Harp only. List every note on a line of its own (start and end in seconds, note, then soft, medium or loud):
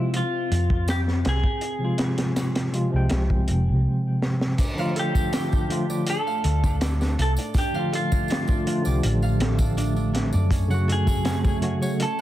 4.59 5.16 D4 medium
4.79 6.26 F5 loud
4.96 6.43 A4 loud
5.16 5.33 D4 medium
5.33 5.52 D4 medium
5.53 5.70 D4 medium
5.70 6.06 D4 medium
5.90 7.37 D5 medium
6.07 6.63 D4 medium
6.27 7.75 F5 loud
6.44 7.92 A4 medium
6.63 6.80 D4 medium
6.81 7.00 D4 loud
7.01 7.18 D4 medium
7.18 7.55 D4 medium
7.38 8.85 D5 medium
7.55 8.11 D4 medium
7.75 9.22 F5 loud
7.92 9.40 A4 loud
8.12 8.29 D4 medium
8.30 8.48 D4 loud
8.49 8.66 D4 medium
8.66 9.03 D4 medium
8.86 10.33 D5 medium
9.03 9.59 D4 medium
9.23 10.76 F5 loud
9.40 10.88 A4 loud
9.59 9.77 D4 medium
9.77 9.96 D4 loud
9.96 10.13 D4 medium
10.13 10.57 D4 medium
10.33 10.57 D5 medium
10.51 11.07 C#4 medium
10.70 12.19 F#5 loud
10.88 12.21 A4 loud
11.07 11.24 C#4 medium
11.25 11.44 C#4 loud
11.44 11.62 C#4 medium
11.62 11.99 C#4 medium
11.82 12.21 C#5 medium
11.99 12.21 C#4 medium